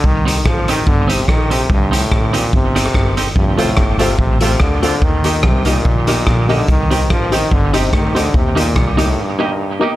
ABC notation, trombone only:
X:1
M:4/4
L:1/16
Q:"Swing" 1/4=144
K:Cdor
V:1 name="Trombone" clef=bass
E,2 E,2 F,2 E,2 D,2 C,2 E,2 C,2 | G,,2 A,,4 B,,2 C,6 z2 | G,,2 A,,4 C,2 C,2 C,2 D,2 D,2 | E,4 C,2 B,,8 D,2 |
E,4 F,2 E,2 D,2 C,2 E,2 D,2 | C,2 B,,3- B,,/2 B,,/2 A,,2 G,,6 z2 |]